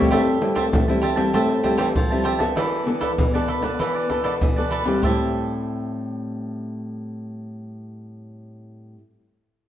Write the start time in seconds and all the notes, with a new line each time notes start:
Already playing: G3 C4 E4
0.02 surdo
0.10 A2 A3 G4 C5 E5 A5, pandeiro, shaker, surdo
0.28 pandeiro, shaker
0.41 G3 C4 E4, pandeiro
0.55 G4 C5 E5 A5, pandeiro, shaker, surdo
0.72 E3 A3, pandeiro, shaker, surdo
0.88 G3 C4 E4 C5 E5 A5, pandeiro, shaker
1.02 G4 C5 E5 A5, pandeiro, shaker
1.16 G3 C4 E4 C5 E5 A5, pandeiro, shaker, surdo
1.33 A2 A3 G4 C5 E5 A5, pandeiro, shaker, surdo
1.49 C5 E5 A5, pandeiro, shaker
1.63 G3 C4 E4 G4 C5 E5 A5, pandeiro, surdo
1.78 E3 G4 C5 E5 A5, pandeiro, shaker
1.95 F3, pandeiro, shaker, surdo
2.10 G3 C4 E4 C5 E5 A5, pandeiro, shaker
2.24 G4 C5 E5 A5, pandeiro
2.39 B3 D4 A4 C5 E5 A5, pandeiro, shaker, surdo
2.56 E3 E4 A4 B4 D5, pandeiro, shaker, surdo
2.73 pandeiro, shaker
2.86 B3 D4 A4, pandeiro
3.00 E4 A4 B4 D5, pandeiro, shaker, surdo
3.18 B2 E3, pandeiro, shaker, surdo
3.34 B3 D4 A4 B4 D5, pandeiro, shaker
3.48 E4 A4 B4 D5, pandeiro
3.62 B3 D4 A4 B4 D5, pandeiro, shaker, surdo
3.79 E3 E4 A4 B4 D5, pandeiro, shaker, surdo
3.95 A4 B4 D5, pandeiro, shaker
4.09 B3 D4 E4 A4 B4 D5, pandeiro, surdo
4.23 B2 E4 A4 B4 D5, pandeiro, shaker
4.41 B2 E3, pandeiro, shaker, surdo
4.56 B3 D4 A4 B4 D5, pandeiro, shaker
4.70 E4 A4 B4 D5, pandeiro
4.84 G3 C4 E4 A4 B4 D5, pandeiro, shaker, surdo
5.01 A2 G3 G4 C5 E5, surdo
5.05 C4 E4 A5